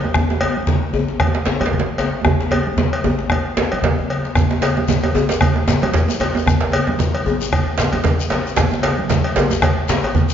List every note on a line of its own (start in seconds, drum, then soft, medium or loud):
0.04 djembe tone medium
0.14 bombo rim loud
0.14 bombo low loud
0.14 djembe tone medium
0.14 djembe bass medium
0.14 low conga medium
0.30 djembe slap medium
0.30 djembe tone medium
0.41 cowbell medium
0.41 djembe tone medium
0.57 high conga medium
0.67 bombo low medium
0.67 djembe slap medium
0.67 low conga medium
0.83 high conga soft
0.94 djembe tone medium
0.94 djembe bass medium
1.09 djembe slap medium
1.09 high conga soft
1.20 bombo rim medium
1.20 bombo low medium
1.20 cowbell soft
1.20 low conga medium
1.27 djembe tone medium
1.35 djembe slap medium
1.46 bombo rim soft
1.46 djembe slap medium
1.46 djembe tone medium
1.60 cowbell soft
1.60 djembe slap soft
1.60 djembe tone medium
1.60 high conga medium
1.60 djembe bass medium
1.66 djembe slap medium
1.72 bombo rim soft
1.72 bombo low medium
1.72 low conga medium
1.79 djembe slap medium
1.98 cowbell soft
1.98 djembe slap medium
1.98 djembe tone medium
2.25 bombo rim medium
2.25 bombo low medium
2.25 djembe slap soft
2.25 djembe tone medium
2.25 djembe bass medium
2.25 low conga medium
2.40 djembe slap medium
2.51 cowbell medium
2.51 djembe slap soft
2.51 djembe tone medium
2.66 djembe slap soft
2.66 high conga medium
2.77 bombo low medium
2.77 djembe slap medium
2.77 djembe tone medium
2.77 high conga soft
2.77 low conga medium
2.93 cowbell soft
2.93 high conga soft
3.04 djembe slap soft
3.04 djembe tone medium
3.04 djembe bass medium
3.19 bombo rim soft
3.19 djembe slap medium
3.19 high conga soft
3.30 bombo rim medium
3.30 bombo low medium
3.30 cowbell soft
3.30 djembe tone medium
3.30 high conga soft
3.30 low conga medium
3.46 high conga soft
3.57 djembe slap medium
3.57 djembe slap loud
3.57 djembe tone medium
3.57 high conga soft
3.71 bombo rim soft
3.71 cowbell soft
3.71 high conga medium
3.71 djembe bass soft
3.82 bombo low medium
3.82 djembe slap medium
3.82 high conga soft
3.82 djembe bass soft
3.82 low conga medium
3.99 high conga soft
3.99 djembe bass medium
4.10 cowbell soft
4.10 djembe slap soft
4.25 djembe slap medium
4.35 bombo rim medium
4.35 bombo low loud
4.35 djembe tone loud
4.35 djembe bass medium
4.35 low conga medium
4.35 shekere medium
4.51 djembe slap medium
4.51 djembe tone medium
4.61 cowbell medium
4.61 djembe slap medium
4.61 djembe tone medium
4.61 shekere soft
4.77 djembe tone medium
4.77 high conga medium
4.88 bombo low medium
4.88 djembe slap medium
4.88 djembe tone medium
4.88 low conga medium
4.88 shekere medium
5.03 cowbell soft
5.03 djembe tone medium
5.03 high conga soft
5.15 djembe tone medium
5.15 djembe bass medium
5.15 shekere soft
5.29 djembe slap medium
5.29 high conga soft
5.29 shekere soft
5.41 bombo rim medium
5.41 bombo low medium
5.41 cowbell soft
5.41 djembe tone medium
5.41 low conga medium
5.41 shekere soft
5.56 djembe tone medium
5.68 bombo rim soft
5.68 djembe slap medium
5.68 djembe tone loud
5.68 djembe tone medium
5.68 shekere medium
5.82 cowbell medium
5.82 djembe slap soft
5.82 djembe tone medium
5.82 high conga medium
5.82 djembe bass medium
5.94 bombo rim soft
5.94 bombo low loud
5.94 djembe slap medium
5.94 low conga medium
5.94 shekere soft
6.08 djembe tone medium
6.08 shekere soft
6.20 cowbell medium
6.20 djembe slap medium
6.20 djembe tone medium
6.35 djembe tone medium
6.35 shekere soft
6.46 bombo rim loud
6.46 bombo low loud
6.46 djembe tone medium
6.46 djembe bass medium
6.46 low conga medium
6.46 shekere medium
6.61 djembe slap medium
6.72 cowbell medium
6.72 djembe tone medium
6.72 shekere soft
6.87 djembe tone medium
6.87 high conga medium
6.99 bombo low loud
6.99 djembe slap medium
6.99 low conga medium
6.99 shekere medium
7.15 cowbell medium
7.15 high conga soft
7.26 djembe tone medium
7.26 djembe bass medium
7.26 shekere soft
7.41 djembe slap soft
7.41 high conga soft
7.41 shekere soft
7.53 bombo rim medium
7.53 bombo low loud
7.53 cowbell medium
7.53 low conga medium
7.53 shekere soft
7.78 bombo rim soft
7.78 djembe slap loud
7.78 djembe slap medium
7.78 djembe tone medium
7.78 shekere medium
7.93 cowbell soft
7.93 djembe slap soft
7.93 djembe tone medium
7.93 high conga medium
7.93 djembe bass medium
8.04 bombo rim soft
8.04 bombo low loud
8.04 djembe slap medium
8.04 low conga medium
8.04 shekere soft
8.20 shekere soft
8.30 cowbell medium
8.30 djembe slap medium
8.32 djembe slap medium
8.32 djembe tone medium
8.47 shekere soft
8.57 bombo rim loud
8.57 bombo low loud
8.57 djembe slap loud
8.57 low conga medium
8.57 djembe bass medium
8.57 shekere medium
8.71 djembe slap medium
8.71 djembe tone medium
8.83 cowbell medium
8.83 djembe slap medium
8.83 djembe tone medium
8.83 shekere soft
8.98 high conga medium
9.10 bombo low loud
9.10 djembe slap medium
9.10 low conga medium
9.10 shekere medium
9.24 cowbell soft
9.24 high conga soft
9.36 djembe slap loud
9.36 djembe tone medium
9.36 djembe bass medium
9.36 shekere soft
9.50 djembe slap medium
9.50 djembe tone medium
9.50 high conga soft
9.50 shekere medium
9.62 bombo rim loud
9.62 bombo low loud
9.62 cowbell soft
9.62 djembe slap medium
9.62 low conga medium
9.62 shekere soft
9.89 bombo rim soft
9.89 djembe slap medium
9.89 djembe tone medium
9.89 shekere medium
10.04 cowbell soft
10.04 djembe slap soft
10.04 djembe bass medium
10.15 bombo rim soft
10.15 bombo low loud
10.15 low conga medium
10.15 shekere soft
10.29 shekere medium